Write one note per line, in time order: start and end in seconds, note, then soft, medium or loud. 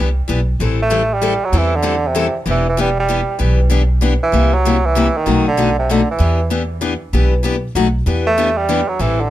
0.00 0.23 C2 medium
0.28 0.55 B1 medium
0.28 0.39 E3 medium
0.28 0.39 B3 medium
0.28 0.40 D4 medium
0.28 0.40 G4 medium
0.60 1.34 A1 medium
0.60 0.79 E3 medium
0.60 0.80 G3 medium
0.60 0.80 C4 medium
0.60 0.80 E4 medium
0.60 0.80 A4 medium
0.82 1.15 A3 medium
0.90 1.01 E3 medium
0.90 1.01 G3 medium
0.90 1.01 C4 medium
0.90 1.02 E4 medium
0.90 1.02 A4 medium
1.14 1.46 G3 medium
1.22 1.32 E3 medium
1.22 1.32 G3 medium
1.22 1.33 C4 medium
1.22 1.33 E4 medium
1.22 1.33 A4 medium
1.45 1.60 F#3 medium
1.52 2.27 E2 medium
1.52 1.73 E3 medium
1.52 1.72 G3 medium
1.52 1.73 C4 medium
1.52 1.73 E4 medium
1.52 1.73 A4 medium
1.58 1.77 E3 medium
1.76 2.09 D3 medium
1.82 1.94 E3 medium
1.82 1.94 G3 medium
1.82 1.94 C4 medium
1.82 1.95 E4 medium
1.82 1.94 A4 medium
2.07 2.36 C3 medium
2.15 2.26 E3 medium
2.15 2.26 G3 medium
2.15 2.26 C4 medium
2.15 2.26 E4 medium
2.15 2.26 A4 medium
2.46 3.21 E1 medium
2.46 2.66 E3 medium
2.46 2.66 B3 medium
2.46 2.66 D4 medium
2.46 2.67 G4 medium
2.51 2.66 E3 medium
2.69 2.79 E3 medium
2.77 2.88 E3 medium
2.77 2.96 G3 medium
2.77 2.89 B3 medium
2.77 2.89 D4 medium
2.77 2.89 G4 medium
3.00 3.39 G3 medium
3.09 3.19 E3 medium
3.09 3.20 B3 medium
3.09 3.20 D4 medium
3.09 3.20 G4 medium
3.39 4.14 B1 medium
3.39 3.59 E3 medium
3.39 3.59 B3 medium
3.39 3.60 D4 medium
3.39 3.60 G4 medium
3.70 3.81 E3 medium
3.70 3.81 B3 medium
3.70 3.82 D4 medium
3.70 3.82 G4 medium
4.01 4.12 E3 medium
4.01 4.13 B3 medium
4.01 4.13 D4 medium
4.01 4.13 G4 medium
4.23 4.55 E3 medium
4.32 5.07 C2 medium
4.32 4.52 C3 medium
4.32 4.53 G3 medium
4.32 4.53 A#3 medium
4.32 4.53 E4 medium
4.32 4.53 G4 medium
4.54 4.87 F#3 loud
4.65 4.76 C3 medium
4.65 4.76 G3 medium
4.65 4.76 A#3 medium
4.65 4.76 E4 medium
4.65 4.76 G4 medium
4.86 5.19 E3 medium
4.95 5.06 C3 medium
4.95 5.06 G3 medium
4.95 5.07 A#3 medium
4.95 5.07 E4 medium
4.95 5.07 G4 medium
5.17 5.47 D#3 medium
5.26 6.01 B1 medium
5.26 5.46 B2 medium
5.26 5.46 F#3 medium
5.26 5.46 A3 medium
5.26 5.46 D#4 medium
5.26 5.47 F#4 medium
5.48 5.75 D3 medium
5.57 5.68 B2 medium
5.57 5.68 F#3 medium
5.57 5.69 A3 medium
5.57 5.69 D#4 medium
5.57 5.69 F#4 medium
5.79 5.93 C3 medium
5.90 6.00 B2 medium
5.90 6.09 D3 medium
5.90 6.00 F#3 medium
5.90 6.00 A3 medium
5.90 6.01 D#4 medium
5.90 6.01 F#4 medium
6.11 6.50 E3 medium
6.19 6.94 E2 medium
6.19 6.39 E3 medium
6.19 6.40 B3 medium
6.19 6.40 D4 medium
6.19 6.40 G4 medium
6.50 6.62 E3 medium
6.50 6.61 B3 medium
6.50 6.62 D4 medium
6.50 6.62 G4 medium
6.81 6.92 E3 medium
6.81 6.92 B3 medium
6.81 6.93 D4 medium
6.81 6.93 G4 medium
7.13 7.63 B1 medium
7.13 7.33 E3 medium
7.13 7.33 B3 medium
7.13 7.33 D4 medium
7.13 7.34 G4 medium
7.43 7.54 E3 medium
7.43 7.55 B3 medium
7.43 7.55 D4 medium
7.43 7.56 G4 medium
7.75 8.00 B1 medium
7.75 7.86 B2 medium
7.75 7.86 F#3 medium
7.75 7.87 A3 medium
7.75 7.87 D#4 medium
7.75 7.87 F#4 medium
8.06 8.81 E2 medium
8.06 8.26 E3 medium
8.06 8.26 B3 medium
8.06 8.27 D4 medium
8.06 8.27 G4 medium
8.27 8.59 A3 medium
8.38 8.48 E3 medium
8.38 8.49 B3 medium
8.38 8.49 D4 medium
8.38 8.49 G4 medium
8.57 8.90 G3 medium
8.69 8.79 E3 medium
8.69 8.80 B3 medium
8.69 8.80 D4 medium
8.69 8.80 G4 medium
8.88 9.03 F#3 medium
8.99 9.30 A1 medium
8.99 9.19 E3 medium
8.99 9.22 E3 medium
8.99 9.20 G3 medium
8.99 9.20 C4 medium
8.99 9.20 E4 medium
8.99 9.21 A4 medium
9.20 9.30 D3 medium